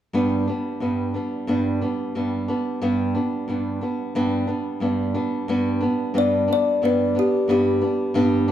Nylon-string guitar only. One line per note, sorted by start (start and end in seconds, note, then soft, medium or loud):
0.13 0.47 G2 medium
0.13 0.47 G3 medium
0.13 0.47 B3 medium
0.13 0.46 D4 medium
0.47 0.80 G3 soft
0.47 0.81 B3 soft
0.47 0.81 D4 medium
0.80 1.14 G2 medium
0.80 1.14 G3 medium
0.80 1.14 B3 medium
0.80 1.13 D4 medium
1.14 1.47 G3 soft
1.14 1.47 B3 soft
1.14 1.47 D4 soft
1.47 1.81 G2 medium
1.47 1.81 G3 medium
1.47 1.81 B3 medium
1.47 1.80 D4 medium
1.81 2.14 G3 soft
1.81 2.15 B3 soft
1.81 2.14 D4 soft
2.15 2.48 G2 medium
2.15 2.48 G3 medium
2.15 2.48 B3 medium
2.15 2.47 D4 medium
2.48 2.81 G3 soft
2.48 2.81 B3 medium
2.48 2.81 D4 medium
2.81 3.14 G2 medium
2.81 3.15 G3 medium
2.81 3.15 B3 medium
2.81 3.13 D4 medium
3.15 3.47 G3 soft
3.15 3.48 B3 soft
3.15 3.48 D4 medium
3.48 3.81 G2 medium
3.48 3.81 G3 medium
3.48 3.81 B3 medium
3.48 3.80 D4 medium
3.81 4.14 G3 soft
3.81 4.15 B3 medium
3.81 4.14 D4 soft
4.15 4.48 G2 medium
4.15 4.48 G3 medium
4.15 4.47 B3 medium
4.15 4.46 D4 medium
4.47 4.80 G3 soft
4.47 4.81 B3 soft
4.47 4.81 D4 medium
4.80 5.14 G2 medium
4.80 5.15 G3 medium
4.80 5.14 B3 medium
4.80 5.13 D4 medium
5.14 5.48 G3 soft
5.14 5.48 B3 medium
5.14 5.48 D4 medium
5.48 5.81 G2 medium
5.48 5.82 G3 medium
5.48 5.81 B3 medium
5.48 5.79 D4 medium
5.81 6.13 G3 soft
5.81 6.14 B3 medium
5.81 6.14 D4 medium
6.14 6.48 G2 medium
6.14 6.48 G3 medium
6.14 6.48 B3 medium
6.14 6.47 D4 medium
6.48 6.81 G3 soft
6.48 6.82 B3 soft
6.48 6.81 D4 medium
6.82 7.15 G2 medium
6.82 7.16 G3 medium
6.82 7.15 B3 medium
6.82 7.14 D4 medium
7.15 7.48 G3 soft
7.15 7.48 B3 medium
7.15 7.48 D4 medium
7.48 7.82 G2 medium
7.48 7.82 G3 medium
7.48 7.81 B3 medium
7.48 7.80 D4 medium
7.81 8.14 G3 soft
7.81 8.15 B3 soft
7.81 8.14 D4 medium
8.14 8.48 G2 medium
8.14 8.49 G3 medium
8.14 8.48 B3 medium
8.14 8.47 D4 loud
8.48 8.52 D4 medium